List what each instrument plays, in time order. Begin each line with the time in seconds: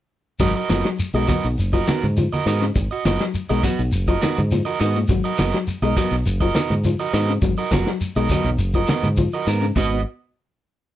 0.39 fingered electric bass G#1, clean electric guitar F#3 F#4 A#4 D#5, muted clean electric guitar stroke, kick, closed hi-hat, high conga, low conga, shekere
0.55 clean electric guitar F#4 D#5, closed hi-hat, shekere
0.69 fingered electric bass F#1, clean electric guitar F3 B3 F#4 A#4 D#5, snare, closed hi-hat, high conga, shekere
0.85 clean electric guitar F#3, snare, shekere
0.99 muted fingered electric bass stroke, closed hi-hat, high conga, shekere
1.14 fingered electric bass B1, clean electric guitar G#3 F#4 A#4 D#5, shekere
1.27 clean electric guitar F#3 B3 F#4 A#4 D#5, kick, open hi-hat, high conga, low conga, shekere
1.44 fingered electric bass B1, shekere
1.58 fingered electric bass F#1, closed hi-hat, high conga, shekere
1.73 clean electric guitar F3 F#4 A#4 D#5, kick, shekere
1.87 clean electric guitar D#3 B3 F#4 A#4, muted clean electric guitar stroke, snare, closed hi-hat, high conga, shekere
2.03 fingered electric bass G#2, high conga, shekere
2.16 clean electric guitar F3, closed hi-hat, high conga, shekere
2.32 clean electric guitar F#4 A#4 D#5, closed hi-hat, high conga, shekere
2.46 fingered electric bass G#2, clean electric guitar D#3 B3 F#4 A#4 D#5, open hi-hat, shekere
2.62 clean electric guitar C#3, snare, closed hi-hat, shekere
2.75 fingered electric bass G#1, muted clean electric guitar stroke, kick, closed hi-hat, high conga, low conga, shekere
2.91 clean electric guitar F#4 D#5, closed hi-hat, shekere
3.05 fingered electric bass F#1, clean electric guitar F3 B3 F#4 A#4 D#5, snare, closed hi-hat, high conga, shekere
3.20 clean electric guitar F#3, snare, shekere
3.34 muted fingered electric bass stroke, closed hi-hat, high conga, shekere
3.49 fingered electric bass B1, clean electric guitar G#3 F#4 A#4 D#5, shekere
3.63 clean electric guitar F#3 B3 F#4, muted clean electric guitar stroke, kick, open hi-hat, low conga, shekere
3.78 fingered electric bass B1, closed hi-hat, shekere
3.92 fingered electric bass F#1, closed hi-hat, high conga, shekere
4.08 clean electric guitar F3 F#4 A#4 D#5, kick, closed hi-hat, shekere
4.21 clean electric guitar D#3 B3 F#4 A#4 D#5, snare, closed hi-hat, high conga, shekere
4.37 fingered electric bass G#2, high conga, shekere
4.51 clean electric guitar F3, closed hi-hat, high conga, shekere
4.65 clean electric guitar F#4 A#4 D#5, shekere
4.80 fingered electric bass G#2, clean electric guitar D#3 B3 F#4 D#5, open hi-hat, shekere
4.95 clean electric guitar A#2, shekere
5.08 fingered electric bass G#1, clean electric guitar F#3, kick, closed hi-hat, high conga, low conga, shekere
5.24 clean electric guitar F#4 A#4 D#5, closed hi-hat, shekere
5.37 fingered electric bass F#1, clean electric guitar B3 F#4 A#4 D#5, muted clean electric guitar stroke, snare, closed hi-hat, high conga, shekere
5.54 clean electric guitar F#3, snare, shekere
5.67 muted fingered electric bass stroke, closed hi-hat, high conga, shekere
5.82 fingered electric bass B1, clean electric guitar G#3 A#4 D#5, shekere
5.96 clean electric guitar F#3 B3 F#4 A#4 D#5, kick, open hi-hat, low conga, shekere
6.11 fingered electric bass B1, snare, shekere
6.25 fingered electric bass F#1, closed hi-hat, high conga, shekere
6.40 clean electric guitar F3 F#4 A#4 D#5, kick, shekere
6.54 clean electric guitar D#3 B3 F#4 A#4 D#5, snare, closed hi-hat, high conga, shekere
6.70 fingered electric bass G#2, high conga, shekere
6.83 clean electric guitar F3, closed hi-hat, high conga, shekere
6.99 clean electric guitar F#4 A#4 D#5, closed hi-hat, shekere
7.13 fingered electric bass G#2, clean electric guitar D#3 B3 F#4 A#4 D#5, open hi-hat, shekere
7.28 clean electric guitar C#3, closed hi-hat, shekere
7.41 fingered electric bass G#1, clean electric guitar F#3, kick, closed hi-hat, high conga, low conga, shekere
7.57 clean electric guitar F#4 A#4 D#5, closed hi-hat, shekere
7.71 fingered electric bass F#1, clean electric guitar F3 B3 F#4 A#4, muted clean electric guitar stroke, kick, snare, closed hi-hat, high conga, shekere
7.87 clean electric guitar F#3, snare, shekere
8.00 muted fingered electric bass stroke, closed hi-hat, high conga, shekere
8.16 fingered electric bass B1, clean electric guitar G#3 F#4 A#4 D#5, shekere
8.29 clean electric guitar F#3 B3 F#4 A#4 D#5, kick, closed hi-hat, high conga, low conga, shekere
8.44 fingered electric bass B1, closed hi-hat, low conga, shekere
8.58 fingered electric bass F#1, closed hi-hat, high conga, shekere
8.73 clean electric guitar F3 F#4 A#4 D#5, kick, closed hi-hat, shekere
8.87 clean electric guitar D#3 B3 F#4 A#4 D#5, snare, closed hi-hat, high conga, shekere
9.03 fingered electric bass G#2, high conga, shekere
9.17 clean electric guitar F3, kick, closed hi-hat, high conga, shekere
9.33 clean electric guitar F#4 A#4 D#5, shekere
9.46 fingered electric bass G#2, clean electric guitar D#3 B3 A#4, muted clean electric guitar stroke, closed hi-hat, shekere
9.62 clean electric guitar C#3, shekere
9.76 fingered electric bass G#1, clean electric guitar G#2 B3 F#4 D#5, muted clean electric guitar stroke, kick, crash, low conga, shekere